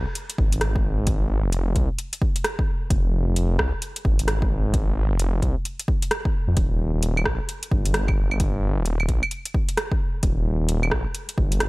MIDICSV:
0, 0, Header, 1, 3, 480
1, 0, Start_track
1, 0, Key_signature, -4, "minor"
1, 0, Tempo, 458015
1, 1122, Time_signature, 4, 2, 24, 8
1, 12249, End_track
2, 0, Start_track
2, 0, Title_t, "Detuned saw bass"
2, 0, Program_c, 0, 39
2, 402, Note_on_c, 0, 32, 83
2, 1508, Note_on_c, 0, 29, 88
2, 1524, Note_off_c, 0, 32, 0
2, 1829, Note_off_c, 0, 29, 0
2, 1841, Note_on_c, 0, 36, 85
2, 1980, Note_off_c, 0, 36, 0
2, 3043, Note_on_c, 0, 29, 100
2, 3414, Note_off_c, 0, 29, 0
2, 3431, Note_on_c, 0, 29, 90
2, 3750, Note_off_c, 0, 29, 0
2, 3762, Note_on_c, 0, 36, 88
2, 3900, Note_off_c, 0, 36, 0
2, 4243, Note_on_c, 0, 32, 87
2, 5352, Note_on_c, 0, 29, 88
2, 5368, Note_off_c, 0, 32, 0
2, 5671, Note_off_c, 0, 29, 0
2, 5685, Note_on_c, 0, 36, 86
2, 5821, Note_off_c, 0, 36, 0
2, 6788, Note_on_c, 0, 41, 91
2, 6873, Note_off_c, 0, 41, 0
2, 6883, Note_on_c, 0, 27, 95
2, 7253, Note_off_c, 0, 27, 0
2, 7271, Note_on_c, 0, 27, 90
2, 7590, Note_off_c, 0, 27, 0
2, 7605, Note_on_c, 0, 34, 86
2, 7741, Note_off_c, 0, 34, 0
2, 8086, Note_on_c, 0, 31, 83
2, 9191, Note_on_c, 0, 27, 88
2, 9207, Note_off_c, 0, 31, 0
2, 9511, Note_off_c, 0, 27, 0
2, 9524, Note_on_c, 0, 34, 87
2, 9661, Note_off_c, 0, 34, 0
2, 10722, Note_on_c, 0, 27, 96
2, 11093, Note_off_c, 0, 27, 0
2, 11110, Note_on_c, 0, 27, 92
2, 11430, Note_off_c, 0, 27, 0
2, 11442, Note_on_c, 0, 34, 88
2, 11580, Note_off_c, 0, 34, 0
2, 11922, Note_on_c, 0, 31, 84
2, 12249, Note_off_c, 0, 31, 0
2, 12249, End_track
3, 0, Start_track
3, 0, Title_t, "Drums"
3, 161, Note_on_c, 9, 42, 51
3, 265, Note_off_c, 9, 42, 0
3, 310, Note_on_c, 9, 42, 55
3, 403, Note_on_c, 9, 36, 97
3, 415, Note_off_c, 9, 42, 0
3, 507, Note_off_c, 9, 36, 0
3, 550, Note_on_c, 9, 42, 57
3, 640, Note_off_c, 9, 42, 0
3, 640, Note_on_c, 9, 37, 99
3, 640, Note_on_c, 9, 42, 55
3, 745, Note_off_c, 9, 37, 0
3, 745, Note_off_c, 9, 42, 0
3, 792, Note_on_c, 9, 36, 102
3, 897, Note_off_c, 9, 36, 0
3, 1119, Note_on_c, 9, 42, 56
3, 1122, Note_on_c, 9, 36, 109
3, 1224, Note_off_c, 9, 42, 0
3, 1227, Note_off_c, 9, 36, 0
3, 1598, Note_on_c, 9, 42, 57
3, 1703, Note_off_c, 9, 42, 0
3, 1841, Note_on_c, 9, 42, 31
3, 1842, Note_on_c, 9, 36, 60
3, 1946, Note_off_c, 9, 42, 0
3, 1947, Note_off_c, 9, 36, 0
3, 2081, Note_on_c, 9, 42, 55
3, 2185, Note_off_c, 9, 42, 0
3, 2231, Note_on_c, 9, 42, 56
3, 2322, Note_on_c, 9, 36, 105
3, 2336, Note_off_c, 9, 42, 0
3, 2427, Note_off_c, 9, 36, 0
3, 2471, Note_on_c, 9, 42, 55
3, 2562, Note_off_c, 9, 42, 0
3, 2562, Note_on_c, 9, 37, 102
3, 2562, Note_on_c, 9, 42, 56
3, 2667, Note_off_c, 9, 37, 0
3, 2667, Note_off_c, 9, 42, 0
3, 2713, Note_on_c, 9, 36, 106
3, 2818, Note_off_c, 9, 36, 0
3, 3044, Note_on_c, 9, 36, 113
3, 3044, Note_on_c, 9, 42, 51
3, 3148, Note_off_c, 9, 36, 0
3, 3149, Note_off_c, 9, 42, 0
3, 3525, Note_on_c, 9, 42, 57
3, 3630, Note_off_c, 9, 42, 0
3, 3763, Note_on_c, 9, 36, 58
3, 3763, Note_on_c, 9, 37, 102
3, 3868, Note_off_c, 9, 36, 0
3, 3868, Note_off_c, 9, 37, 0
3, 4003, Note_on_c, 9, 42, 54
3, 4108, Note_off_c, 9, 42, 0
3, 4152, Note_on_c, 9, 42, 54
3, 4244, Note_on_c, 9, 36, 101
3, 4257, Note_off_c, 9, 42, 0
3, 4349, Note_off_c, 9, 36, 0
3, 4393, Note_on_c, 9, 42, 53
3, 4483, Note_off_c, 9, 42, 0
3, 4483, Note_on_c, 9, 37, 102
3, 4483, Note_on_c, 9, 42, 55
3, 4588, Note_off_c, 9, 37, 0
3, 4588, Note_off_c, 9, 42, 0
3, 4633, Note_on_c, 9, 36, 105
3, 4738, Note_off_c, 9, 36, 0
3, 4965, Note_on_c, 9, 36, 107
3, 4965, Note_on_c, 9, 42, 51
3, 5069, Note_off_c, 9, 36, 0
3, 5070, Note_off_c, 9, 42, 0
3, 5444, Note_on_c, 9, 42, 53
3, 5549, Note_off_c, 9, 42, 0
3, 5684, Note_on_c, 9, 36, 61
3, 5686, Note_on_c, 9, 42, 29
3, 5789, Note_off_c, 9, 36, 0
3, 5791, Note_off_c, 9, 42, 0
3, 5924, Note_on_c, 9, 42, 51
3, 6029, Note_off_c, 9, 42, 0
3, 6073, Note_on_c, 9, 42, 51
3, 6164, Note_on_c, 9, 36, 104
3, 6178, Note_off_c, 9, 42, 0
3, 6268, Note_off_c, 9, 36, 0
3, 6313, Note_on_c, 9, 42, 55
3, 6404, Note_off_c, 9, 42, 0
3, 6404, Note_on_c, 9, 37, 104
3, 6404, Note_on_c, 9, 42, 54
3, 6509, Note_off_c, 9, 37, 0
3, 6509, Note_off_c, 9, 42, 0
3, 6553, Note_on_c, 9, 36, 103
3, 6658, Note_off_c, 9, 36, 0
3, 6882, Note_on_c, 9, 42, 48
3, 6884, Note_on_c, 9, 36, 110
3, 6987, Note_off_c, 9, 42, 0
3, 6989, Note_off_c, 9, 36, 0
3, 7363, Note_on_c, 9, 42, 54
3, 7468, Note_off_c, 9, 42, 0
3, 7517, Note_on_c, 9, 75, 34
3, 7603, Note_on_c, 9, 37, 100
3, 7605, Note_on_c, 9, 36, 57
3, 7622, Note_off_c, 9, 75, 0
3, 7708, Note_off_c, 9, 37, 0
3, 7710, Note_off_c, 9, 36, 0
3, 7847, Note_on_c, 9, 42, 50
3, 7952, Note_off_c, 9, 42, 0
3, 7993, Note_on_c, 9, 42, 53
3, 8085, Note_on_c, 9, 36, 101
3, 8098, Note_off_c, 9, 42, 0
3, 8190, Note_off_c, 9, 36, 0
3, 8232, Note_on_c, 9, 42, 49
3, 8322, Note_off_c, 9, 42, 0
3, 8322, Note_on_c, 9, 37, 100
3, 8322, Note_on_c, 9, 42, 52
3, 8427, Note_off_c, 9, 37, 0
3, 8427, Note_off_c, 9, 42, 0
3, 8470, Note_on_c, 9, 75, 35
3, 8474, Note_on_c, 9, 36, 98
3, 8575, Note_off_c, 9, 75, 0
3, 8579, Note_off_c, 9, 36, 0
3, 8713, Note_on_c, 9, 75, 33
3, 8802, Note_on_c, 9, 42, 51
3, 8805, Note_on_c, 9, 36, 101
3, 8818, Note_off_c, 9, 75, 0
3, 8907, Note_off_c, 9, 42, 0
3, 8909, Note_off_c, 9, 36, 0
3, 9280, Note_on_c, 9, 42, 52
3, 9385, Note_off_c, 9, 42, 0
3, 9431, Note_on_c, 9, 75, 34
3, 9522, Note_on_c, 9, 42, 28
3, 9524, Note_on_c, 9, 36, 54
3, 9535, Note_off_c, 9, 75, 0
3, 9627, Note_off_c, 9, 42, 0
3, 9628, Note_off_c, 9, 36, 0
3, 9671, Note_on_c, 9, 75, 55
3, 9759, Note_on_c, 9, 42, 47
3, 9776, Note_off_c, 9, 75, 0
3, 9863, Note_off_c, 9, 42, 0
3, 9909, Note_on_c, 9, 42, 52
3, 10003, Note_on_c, 9, 36, 93
3, 10013, Note_off_c, 9, 42, 0
3, 10108, Note_off_c, 9, 36, 0
3, 10151, Note_on_c, 9, 42, 51
3, 10244, Note_off_c, 9, 42, 0
3, 10244, Note_on_c, 9, 37, 95
3, 10244, Note_on_c, 9, 42, 50
3, 10349, Note_off_c, 9, 37, 0
3, 10349, Note_off_c, 9, 42, 0
3, 10392, Note_on_c, 9, 36, 102
3, 10496, Note_off_c, 9, 36, 0
3, 10720, Note_on_c, 9, 42, 51
3, 10721, Note_on_c, 9, 36, 100
3, 10825, Note_off_c, 9, 42, 0
3, 10826, Note_off_c, 9, 36, 0
3, 11199, Note_on_c, 9, 42, 56
3, 11304, Note_off_c, 9, 42, 0
3, 11351, Note_on_c, 9, 75, 35
3, 11439, Note_on_c, 9, 37, 93
3, 11442, Note_on_c, 9, 36, 54
3, 11455, Note_off_c, 9, 75, 0
3, 11544, Note_off_c, 9, 37, 0
3, 11547, Note_off_c, 9, 36, 0
3, 11681, Note_on_c, 9, 42, 51
3, 11786, Note_off_c, 9, 42, 0
3, 11830, Note_on_c, 9, 42, 50
3, 11923, Note_on_c, 9, 36, 92
3, 11935, Note_off_c, 9, 42, 0
3, 12028, Note_off_c, 9, 36, 0
3, 12071, Note_on_c, 9, 42, 53
3, 12160, Note_off_c, 9, 42, 0
3, 12160, Note_on_c, 9, 37, 96
3, 12160, Note_on_c, 9, 42, 51
3, 12249, Note_off_c, 9, 37, 0
3, 12249, Note_off_c, 9, 42, 0
3, 12249, End_track
0, 0, End_of_file